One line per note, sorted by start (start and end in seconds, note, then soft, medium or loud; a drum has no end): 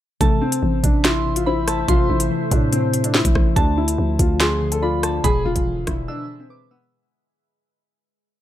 0.20 0.41 A1 loud
0.20 0.83 C3 loud
0.20 3.53 A3 medium
0.20 0.40 A3 medium
0.20 3.53 C5 medium
0.20 3.53 E5 medium
0.20 1.01 A5 loud
0.20 kick loud
0.20 closed hi-hat medium
0.42 0.81 C4 medium
0.52 closed hi-hat medium
0.63 0.83 A1 loud
0.63 1.68 E3 medium
0.83 1.85 A1 loud
0.83 1.03 C3 medium
0.83 1.02 D4 medium
0.83 kick loud
0.83 closed hi-hat medium
1.04 1.24 C3 medium
1.04 1.34 E4 medium
1.04 1.44 C6 loud
1.04 snare loud
1.04 closed hi-hat medium
1.25 1.87 C3 medium
1.36 1.46 F4 medium
1.36 closed hi-hat medium
1.46 1.86 E4 medium
1.46 1.66 C5 loud
1.46 1.66 B5 medium
1.67 2.72 C5 medium
1.67 1.87 A5 medium
1.67 cross-stick medium
1.67 closed hi-hat medium
1.88 2.09 A1 loud
1.88 2.51 C3 medium
1.88 2.08 F4 loud
1.88 2.28 C6 loud
1.88 kick loud
1.88 closed hi-hat medium
2.10 2.30 A1 loud
2.10 2.49 E4 medium
2.20 closed hi-hat medium
2.31 3.35 E3 medium
2.51 3.22 A2 loud
2.51 2.72 C3 medium
2.51 2.70 D4 medium
2.51 kick loud
2.51 closed hi-hat medium
2.73 2.92 C3 medium
2.73 3.02 C4 medium
2.73 closed hi-hat medium
2.93 3.56 C3 medium
2.93 closed hi-hat medium
3.04 3.14 D4 medium
3.04 closed hi-hat medium
3.14 3.54 E4 medium
3.14 3.35 C5 loud
3.14 snare loud
3.25 3.35 A1 loud
3.25 kick loud
3.25 closed hi-hat medium
3.35 3.55 A1 loud
3.35 3.57 C5 medium
3.35 kick loud
3.35 cross-stick medium
3.56 3.97 D2 loud
3.56 4.18 D3 loud
3.56 5.23 D3 medium
3.56 5.23 F3 medium
3.56 5.23 D4 medium
3.56 3.75 D4 medium
3.56 4.36 A5 loud
3.56 kick loud
3.56 closed hi-hat medium
3.78 4.17 E4 medium
3.88 closed hi-hat medium
3.98 4.18 D2 loud
3.98 5.03 F3 medium
4.19 5.20 D2 loud
4.19 4.39 D3 medium
4.19 4.38 F4 medium
4.19 kick loud
4.19 closed hi-hat medium
4.40 4.60 D3 medium
4.40 4.70 G#4 loud
4.40 4.80 C6 medium
4.40 snare loud
4.40 closed hi-hat medium
4.61 5.24 D3 medium
4.72 4.81 A4 medium
4.72 closed hi-hat medium
4.82 5.22 F4 medium
4.82 5.02 D5 loud
4.82 5.02 B5 medium
5.03 5.24 D5 medium
5.03 5.23 A5 medium
5.03 cross-stick medium
5.03 closed hi-hat medium
5.24 5.44 E1 loud
5.24 6.29 B2 loud
5.24 6.90 G#3 medium
5.24 6.90 G#4 medium
5.24 5.43 G#4 loud
5.24 6.90 B4 medium
5.24 6.90 E5 medium
5.24 5.63 B5 loud
5.24 kick loud
5.24 closed hi-hat medium
5.45 5.55 E1 loud
5.45 5.85 F4 loud
5.56 5.86 E1 loud
5.56 kick loud
5.56 closed hi-hat medium
5.65 6.71 E3 medium
5.87 6.08 E1 loud
5.87 6.06 E4 medium
5.87 kick loud
5.87 cross-stick loud
5.87 closed hi-hat medium
6.08 6.38 D4 loud
6.08 6.48 E6 medium
6.40 6.69 C4 medium
6.50 6.70 B4 loud
6.50 6.70 D6 medium
6.71 6.90 B3 medium
6.71 6.92 B4 medium
6.71 6.91 E6 medium